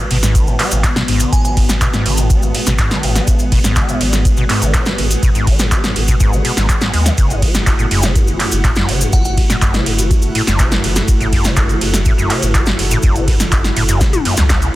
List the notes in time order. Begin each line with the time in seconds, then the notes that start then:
Already playing: G#3 B3 F#4 B4
0.07 G#1 B2 G#4, open hi-hat, ride
0.23 G#2, snare, closed hi-hat, cabasa
0.35 D#3, kick, closed hi-hat, ride, cabasa
0.46 G#1 G#2 F#5, cabasa
0.59 G#3, clap, open hi-hat, ride
0.71 G#1 F#2, closed hi-hat, cabasa
0.84 B2, kick, clap, closed hi-hat, ride, cabasa
0.96 B2, snare, cabasa
1.08 G#1 G#2, open hi-hat, ride
1.20 D#3, closed hi-hat, cabasa
1.32 G#1 G#2 G#5, kick, closed hi-hat, ride, cabasa
1.45 G#3 G#5, closed hi-hat, cabasa
1.57 F#2, kick, open hi-hat, ride
1.69 G#1 B2, snare, closed hi-hat, cabasa
1.81 B2, kick, clap, closed hi-hat, ride, cabasa
1.93 G#2, snare, closed hi-hat, cabasa
2.06 G#1 D#3, open hi-hat, ride
2.17 G#2, closed hi-hat, cabasa
2.30 G#3, kick, closed hi-hat, ride, cabasa
2.42 G#1 F#2, cabasa
2.54 B2, open hi-hat, ride
2.67 G#1 B2, snare, closed hi-hat, cabasa
2.78 G#2, kick, clap, closed hi-hat, ride, cabasa
2.91 D#3, snare, closed hi-hat, cabasa
3.03 G#1 G#2, open hi-hat, ride
3.15 G#3, snare, closed hi-hat, cabasa
3.27 G#1 F#2, kick, closed hi-hat, ride, cabasa
3.39 B2, closed hi-hat, cabasa
3.52 B2, kick, open hi-hat, ride
3.64 G#1 G#2, snare, closed hi-hat, cabasa
3.76 D#3, kick, clap, closed hi-hat, ride, cabasa
3.89 G#2, closed hi-hat, cabasa
4.01 G#1 G#3, open hi-hat, ride
4.13 F#2, snare, closed hi-hat, cabasa
4.25 B2, kick, closed hi-hat, ride, cabasa
4.37 G#1 B2, cabasa
4.50 G#2, clap, open hi-hat, ride
4.62 G#1 D#3, closed hi-hat, cabasa
4.74 G#2, kick, clap, closed hi-hat, ride, cabasa
4.86 G#3, snare, cabasa
4.98 G#1 F#2, open hi-hat, ride
5.11 B2, closed hi-hat, cabasa
5.23 G#1 B2, kick, closed hi-hat, ride, cabasa
5.35 G#2, closed hi-hat, cabasa
5.47 D#3, kick, open hi-hat, ride
5.59 G#1 G#2, snare, closed hi-hat, cabasa
5.72 G#3, kick, clap, closed hi-hat, ride, cabasa
5.84 F#2, snare, closed hi-hat, cabasa
5.96 G#1 B2, open hi-hat, ride
6.08 B2, kick, closed hi-hat, cabasa
6.20 G#2, kick, closed hi-hat, ride, cabasa
6.33 G#1 D#3, cabasa
6.45 B2, open hi-hat, ride
6.57 G#1 G#2, snare, closed hi-hat, cabasa
6.69 G#3, kick, clap, closed hi-hat, ride, cabasa
6.81 G#2, snare, closed hi-hat, cabasa
6.94 D#2 G#3, open hi-hat, ride
7.06 C#3, snare, closed hi-hat, cabasa
7.18 F#1 C#3 A3 E4 F#4, kick, closed hi-hat, ride, cabasa
7.30 F#2, closed hi-hat, cabasa
7.42 F#3, kick, open hi-hat, ride
7.55 F#1 E2, snare, closed hi-hat, cabasa
7.67 A2, kick, clap, closed hi-hat, ride, cabasa
7.79 A2, closed hi-hat, cabasa
7.89 F#1 F#2 A4, open hi-hat, ride
8.03 C#3, snare, closed hi-hat, cabasa
8.15 F#2, kick, closed hi-hat, ride, cabasa
8.27 F#1 F#3, cabasa
8.40 E2, clap, open hi-hat, ride
8.52 F#1 A2, closed hi-hat, cabasa
8.64 A2, kick, clap, closed hi-hat, ride, cabasa
8.75 F#2, snare, cabasa
8.89 F#1 C#3, open hi-hat, ride
9.01 F#2, closed hi-hat, cabasa
9.13 F#1 F#3 F#5, kick, closed hi-hat, ride, cabasa
9.25 E2 F#5, closed hi-hat, cabasa
9.37 A2, kick, open hi-hat, ride
9.50 F#1 A2, snare, closed hi-hat, cabasa
9.62 F#2, kick, clap, closed hi-hat, ride, cabasa
9.74 C#3, snare, closed hi-hat, cabasa
9.86 F#1 F#2, open hi-hat, ride
9.99 F#3, closed hi-hat, cabasa
10.11 E2, kick, closed hi-hat, ride, cabasa
10.22 F#1 A2, cabasa
10.35 A2, open hi-hat, ride
10.47 F#1 F#2, snare, closed hi-hat, cabasa
10.59 C#3, kick, clap, closed hi-hat, ride, cabasa
10.72 F#2, snare, closed hi-hat, cabasa
10.84 F#1 F#3, open hi-hat, ride
10.96 E2, snare, closed hi-hat, cabasa
11.08 F#1 A2, kick, closed hi-hat, ride, cabasa
11.20 A2, closed hi-hat, cabasa
11.32 F#2, kick, open hi-hat, ride
11.44 F#1 C#3, snare, closed hi-hat, cabasa
11.57 F#2, kick, clap, closed hi-hat, ride, cabasa
11.69 F#3, closed hi-hat, cabasa
11.81 F#1 E2, open hi-hat, ride
11.94 A2, snare, closed hi-hat, cabasa
12.05 A2, kick, closed hi-hat, ride, cabasa
12.18 F#1 F#2, cabasa
12.30 C#3, clap, open hi-hat, ride
12.42 F#1 F#2, closed hi-hat, cabasa
12.54 F#3, kick, clap, closed hi-hat, ride, cabasa
12.66 E2, snare, cabasa
12.79 F#1 A2, open hi-hat, ride
12.91 A2, closed hi-hat, cabasa
13.03 F#1 F#2, kick, closed hi-hat, ride, cabasa
13.15 C#3, closed hi-hat, cabasa
13.28 F#2, kick, open hi-hat, ride
13.40 F#1 F#3, snare, closed hi-hat, cabasa
13.52 E2, kick, clap, closed hi-hat, ride, cabasa
13.64 A2, snare, closed hi-hat, cabasa
13.76 F#1 A2, open hi-hat, ride
13.88 F#2, closed hi-hat, cabasa
14.01 C#3, kick, snare, closed hi-hat, ride, cabasa
14.13 F#1 F#2, closed hi-hat, high tom, cabasa
14.25 F#2, open hi-hat, ride
14.37 C#2 E2, snare, closed hi-hat, cabasa
14.49 E2, kick, snare, clap, closed hi-hat, ride, cabasa
14.62 B2, closed hi-hat, cabasa